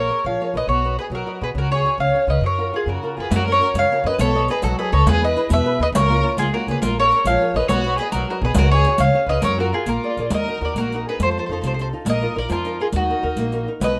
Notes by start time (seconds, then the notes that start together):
Already playing: A#4
0.00 C#5
0.10 G#4 A#4 C#5
0.25 A#1 F3 C#5 F5
0.41 G#4 A#4 C#5
0.54 A#1 G#4 A#4 B4 C#5 D#5
0.68 B1 B3 F#4 C#5
0.85 F#4 B4 D#5
0.99 F#4 G#4 B4 D#5
1.10 B1 F#3 F#4
1.15 A#4
1.26 F#4 B4 D#5
1.41 B1 F#4 G#4 B4 D#5
1.55 C#2 C#4 F#4 A#4
1.71 F#4 G#4 C#5
1.84 F#4 G#4 C#5
1.98 C#2 C#4 C#5 F5
2.15 G#4 C#5 F5
2.27 C#2 G#4 B4 C#5 D#5 F5
2.41 F#2 F#3
2.46 A#4 C#5
2.58 F4 F#4 A#4
2.73 F4 F#4 G#4 A#4
2.86 F#2 C#3 F#4 A#4
3.03 F4 F#4 A#4
3.17 F#2 F4 F#4 G#4 A#4 B4
3.31 F#2 F#3 F#4, riq
3.36 A#4
3.48 C#4 F#4 A#4
3.52 C#5
3.61 C#4 F#4 A#4, riq
3.74 F#2 C#3 C#5, riq
3.79 F5
3.92 C#4 F#4 A#4
4.04 F#2 C#4 F#4 A#4 B4 D#5
4.18 B1 B3 A4 C#5, riq
4.35 A4 B4 D#5
4.48 G#4 A4 B4 D#5, riq
4.62 B1 F#3 F#4 A4, riq
4.79 G#4 A4 B4 D#5
4.92 C#2 A4 B4 C#5 D#5
5.06 E2 E3 B4, riq
5.11 G#4
5.22 E4 G#4 B4 D#5
5.27 B4
5.36 E4 G#4 B4, riq
5.49 E2 B2 B4, riq
5.54 E5
5.65 E4 G#4 B4
5.79 D#2 E4 G#4 B4 D#5
5.92 C#2 C#3 A#4 C#5, riq
6.09 A#3 C#4 F4
6.22 A#3 C#4 F4
6.37 C#2 G#3 F4 G#4, riq
6.53 A#3 C#4 F4 F#4 A#4
6.67 C#2 A#3 C#4 F4 G#4, riq
6.71 B4
6.82 A#1 A#3 F4 A#4, riq
6.99 G#4 A#4 C#5
7.12 G#4 A#4 C#5, riq
7.25 A#1 F3 C#5 F5, riq
7.42 G#4 A#4 C#5
7.54 A#1 G#4 A#4 B4 C#5 D#5
7.68 B1 B3 F#4 C#5, riq
7.86 F#4 B4 D#5
7.98 F#4 G#4 B4 D#5, riq
8.12 B1 F#3 F#4 A#4, riq
8.28 F#4 A#4 B4 D#5
8.42 B1 F#4 G#4 B4 D#5
8.54 C#2 C#4 F#4 A#4, riq
8.71 F#4 G#4 C#5
8.84 F#4 G#4 C#5, riq
8.98 C#2 C#4 C#5 F5, riq
9.15 G#4 C#5 F5
9.27 C#2 G#4 B4 C#5 D#5 F5
9.42 F#2 F#3 A#4 C#5, riq
9.59 F4 F#4 A#4
9.73 F4 F#4 G#4 A#4
9.86 A#1 A#3 F4 A#4, riq
10.03 G#4 A#4 D5
10.17 A#1 G#4 A#4 D5, riq
10.30 D#2 D#3 A#4, riq
10.34 D#5
10.48 D#4 F#4 A#4
10.61 D#2 D#4 F#4 A#4 D5
10.75 A#1 A#3 F#4 A#4, riq
10.92 D#4 F#4 A#4, riq
11.07 D#4 F#4 G#4 A#4 B4
11.19 F2 F3 A4 C5, riq
11.38 D#4 F4 A4 C5
11.46 F2 C5
11.51 D#4 F4 A4 C5
11.61 C2 C3 C5, riq
11.67 C5
11.74 C5
11.79 D#4 F4 A4 C5, riq
11.93 D#4 F4 A4
12.05 A#1 A#3 A#4, riq
12.10 D#5
12.22 D#4 F4 A#4
12.35 A#1 D#4 F4 A#4 D5
12.49 F2 F3 F4 A#4, riq
12.65 D#4 F4 A#4, riq
12.80 D#4 F4 G#4 A#4
12.92 D#2 D#3 D#4 F#4, riq
13.10 D#4 F#4 A#4
13.22 D#2 D#4 F#4 A#4
13.36 A#1 A#3, riq
13.52 D#4 F#4 A#4, riq
13.67 D#4 F#4 A#4
13.80 B1 B2 B4 D#5, riq